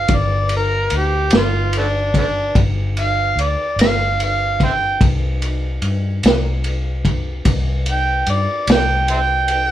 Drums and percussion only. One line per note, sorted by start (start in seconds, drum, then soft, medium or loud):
0.08 kick loud
0.08 ride medium
0.49 ride medium
0.90 ride medium
1.30 snare loud
1.30 ride medium
1.73 ride medium
2.14 kick medium
2.14 ride medium
2.55 kick loud
2.55 ride medium
2.97 ride medium
3.39 ride medium
3.79 snare loud
3.79 ride medium
4.20 ride medium
4.60 kick medium
4.60 ride medium
5.01 kick loud
5.01 ride medium
5.42 ride medium
5.82 ride medium
6.23 snare loud
6.23 ride medium
6.64 ride medium
7.05 kick medium
7.05 ride medium
7.45 kick loud
7.45 ride medium
7.86 ride medium
8.26 ride medium
8.67 snare loud
8.67 ride medium
9.08 ride medium
9.48 ride medium